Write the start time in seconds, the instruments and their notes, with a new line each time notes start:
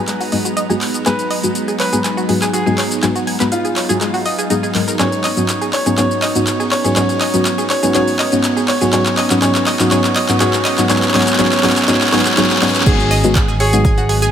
Already playing: analog synth bass G#1, ambient pad F#3 G#3 B3 D#4 A#5, grand piano B4
0.08 synth pluck G#3, clap, closed hi-hat, shaker
0.20 synth pluck F#4, open hi-hat, shaker
0.32 synth stab G#2 F#3 G#3 B3 D#4 F#4, synth pluck D#5, open hi-hat
0.45 synth pluck F#4, closed hi-hat, shaker
0.57 synth pluck D#5, closed hi-hat, shaker
0.70 synth stab G#2 F#3 G#3 B3 D#4 F#4, synth pluck G#4, shaker
0.81 clap, open hi-hat
0.94 closed hi-hat, shaker
1.06 analog synth bass G#1, synth stab G#2 F#3 G#3 B3 D#4 F#4, synth pluck G#4, grand piano B4, clap, closed hi-hat, shaker
1.19 closed hi-hat, shaker
1.31 synth pluck D#5, open hi-hat
1.43 synth stab G#2 F#3 G#3 B3 D#4 F#4, closed hi-hat, shaker
1.55 closed hi-hat, shaker
1.68 synth pluck G#4, closed hi-hat, shaker
1.80 grand piano B4, synth pluck C#5, clap, open hi-hat
1.93 synth stab G#2 F#3 G#3 B3 D#4 F#4, synth pluck G#4, closed hi-hat, shaker
2.04 synth pluck G#5, clap, closed hi-hat, shaker
2.17 synth pluck F#4, shaker
2.29 synth stab G#2 F#3 G#3 B3 D#4 F#4, synth pluck G#4, open hi-hat
2.42 synth pluck G#4, clap, closed hi-hat, shaker
2.53 synth pluck F#4, grand piano G#4, closed hi-hat, shaker
2.66 synth stab G#2 F#3 G#3 B3 D#4 F#4, synth pluck G#4, shaker
2.78 synth pluck C#5, clap, open hi-hat
2.91 closed hi-hat, shaker
3.03 analog synth bass G#1, synth stab G#2 F#3 G#3 B3 D#4 F#4, synth pluck G#5, clap, closed hi-hat, shaker
3.16 synth pluck F#4, closed hi-hat, shaker
3.27 synth pluck G#5, open hi-hat
3.40 synth stab G#2 F#3 G#3 B3 D#4 F#4, synth pluck B4, clap, closed hi-hat, shaker
3.52 grand piano F4, closed hi-hat, shaker
3.65 synth pluck G#4, closed hi-hat, shaker
3.76 synth pluck C#5, clap, open hi-hat
3.89 synth stab G#2 F#3 G#3 B3 D#4 F#4, synth pluck G#4, closed hi-hat, shaker
4.01 synth pluck G#3, clap, closed hi-hat, shaker
4.14 synth pluck F#4, open hi-hat, shaker
4.26 synth pluck D#5, open hi-hat
4.39 synth pluck G#4, closed hi-hat, shaker
4.50 synth stab G#2 F#3 G#3 B3 D#4 G#4, synth pluck D#4, closed hi-hat, shaker
4.63 synth pluck G#4, shaker
4.75 synth stab G#2 F#3 G#3 B3 D#4 A#4, clap, open hi-hat
4.88 synth pluck A#4, closed hi-hat, shaker
4.99 analog synth bass G#1, synth stab G#2 F#3 B3 C#4 D#4 F#4, ambient pad B3 C#4, synth pluck G#4, grand piano C#5, clap, closed hi-hat, riser, shaker
5.12 closed hi-hat, shaker
5.24 synth pluck D#5, clap, open hi-hat
5.37 synth stab G#2 F#3 B3 C#4 D#4 F#4, closed hi-hat, shaker
5.49 clap, closed hi-hat, shaker
5.61 synth pluck G#4, closed hi-hat, shaker
5.73 grand piano C#5, synth pluck C#5, clap, open hi-hat
5.86 synth stab G#2 F#3 B3 C#4 D#4 F#4, synth pluck G#4, closed hi-hat, shaker
5.98 synth stab G#2 F#3 B3 C#4 D#4 F#4, synth pluck G#4, grand piano C#5, clap, closed hi-hat, shaker
6.11 shaker
6.22 synth pluck D#5, clap, open hi-hat
6.35 synth stab G#2 F#3 B3 C#4 D#4 F#4, closed hi-hat, shaker
6.47 clap, closed hi-hat, shaker
6.60 synth pluck G#4, shaker
6.71 grand piano C#5, synth pluck C#5, clap, open hi-hat
6.84 synth stab G#2 F#3 B3 C#4 D#4 F#4, synth pluck G#4, closed hi-hat, shaker
6.96 analog synth bass G#1, synth stab G#2 F#3 B3 C#4 D#4 F#4, synth pluck G#4, grand piano C#5, clap, closed hi-hat, shaker
7.09 closed hi-hat, shaker
7.21 synth pluck D#5, clap, open hi-hat
7.34 synth stab G#2 F#3 B3 C#4 D#4 F#4, closed hi-hat, shaker
7.45 clap, closed hi-hat, shaker
7.58 synth pluck G#4, closed hi-hat, shaker
7.70 synth pluck C#5, grand piano C#5, clap, open hi-hat
7.83 synth stab G#2 F#3 B3 C#4 D#4 F#4, synth pluck G#4, closed hi-hat, shaker
7.94 synth stab G#2 F#3 B3 C#4 D#4 F#4, synth pluck G#4, grand piano C#5, clap, closed hi-hat, shaker
8.07 open hi-hat, shaker
8.19 synth pluck D#5, clap, open hi-hat
8.32 synth stab G#2 F#3 B3 C#4 D#4 F#4, closed hi-hat, shaker
8.44 clap, closed hi-hat, shaker
8.57 synth pluck G#4, shaker
8.68 grand piano C#5, synth pluck C#5, clap, open hi-hat
8.81 synth stab G#2 F#3 B3 C#4 D#4 F#4, synth pluck G#4, closed hi-hat, shaker
8.93 analog synth bass G#1, synth stab G#2 F#3 B3 C#4 D#4 F#4, synth pluck G#4, grand piano C#5, clap, closed hi-hat, shaker
9.06 clap, closed hi-hat, shaker
9.17 synth pluck D#5, clap, open hi-hat
9.30 synth stab G#2 F#3 B3 C#4 D#4 F#4, clap, closed hi-hat, shaker
9.42 synth stab G#2 F#3 B3 C#4 D#4 F#4, synth pluck G#4, grand piano C#5, clap, closed hi-hat, shaker
9.55 clap, closed hi-hat, shaker
9.67 synth pluck D#5, clap, open hi-hat
9.79 synth stab G#2 F#3 B3 C#4 D#4 F#4, clap, closed hi-hat, shaker
9.91 synth stab G#2 F#3 B3 C#4 D#4 F#4, synth pluck G#4, grand piano C#5, clap, closed hi-hat, shaker
10.04 clap, shaker
10.16 synth pluck D#5, clap, open hi-hat
10.29 synth stab G#2 F#3 B3 C#4 D#4 F#4, clap, closed hi-hat, shaker
10.40 synth stab G#2 F#3 B3 C#4 D#4 F#4, synth pluck G#4, grand piano C#5, clap, closed hi-hat, shaker
10.53 clap, shaker
10.65 synth pluck D#5, clap, open hi-hat
10.78 synth stab G#2 F#3 B3 C#4 D#4 F#4, clap, closed hi-hat, shaker
10.89 analog synth bass G#1, synth stab G#2 F#3 B3 C#4 D#4 F#4, synth pluck G#4, grand piano C#5, clap, closed hi-hat, shaker
10.96 clap
11.02 clap, closed hi-hat, shaker
11.08 clap
11.14 synth stab G#2 F#3 B3 C#4 D#4 F#4, synth pluck G#4, grand piano C#5, clap, open hi-hat
11.21 clap
11.27 clap, closed hi-hat, shaker
11.33 clap
11.39 synth stab G#2 F#3 B3 C#4 D#4 F#4, synth pluck G#4, grand piano C#5, clap, closed hi-hat, shaker
11.45 clap
11.52 clap, closed hi-hat, shaker
11.57 clap
11.63 synth stab G#2 F#3 B3 C#4 D#4 F#4, synth pluck G#4, grand piano C#5, clap, open hi-hat
11.70 clap
11.76 clap, closed hi-hat, shaker
11.82 clap
11.88 synth stab G#2 F#3 B3 C#4 D#4 F#4, synth pluck G#4, grand piano C#5, clap, closed hi-hat, shaker
11.94 clap
12.01 clap, open hi-hat, shaker
12.07 clap
12.12 synth stab G#2 F#3 B3 C#4 D#4 F#4, synth pluck G#4, grand piano C#5, clap, open hi-hat
12.19 clap
12.25 clap, closed hi-hat, shaker
12.31 clap
12.37 synth stab G#2 F#3 B3 C#4 D#4 F#4, synth pluck G#4, grand piano C#5, clap, closed hi-hat, shaker
12.44 clap
12.50 clap, shaker
12.56 clap
12.62 synth stab G#2 F#3 B3 C#4 D#4 F#4, synth pluck G#4, grand piano C#5, clap, open hi-hat
12.68 clap
12.75 clap, closed hi-hat, shaker
12.80 clap
12.86 analog synth bass G#1, synth stab G#2 F#3 G#3 B3 D#4 F#4, ambient pad F#3 G#3 B3 D#4 A#5, grand piano G#4, synth pluck G#4 G#5, kick, closed hi-hat, crash, shaker
13.00 shaker
13.11 synth pluck D#5 D#6, open hi-hat
13.24 synth stab G#2 F#3 G#3 B3 D#4 F#4, closed hi-hat, shaker
13.35 kick, clap, closed hi-hat, shaker
13.48 synth pluck G#4 G#5, shaker
13.60 grand piano G#4, synth pluck C#5 C#6, open hi-hat
13.73 synth stab G#2 F#3 G#3 B3 D#4 F#4, synth pluck G#4 G#5, closed hi-hat, shaker
13.85 synth pluck G#5 G#6, kick, closed hi-hat, shaker
13.98 synth pluck F#4 F#5, closed hi-hat, shaker
14.09 synth pluck G#4 G#5, open hi-hat
14.22 synth pluck G#4 G#5, closed hi-hat, shaker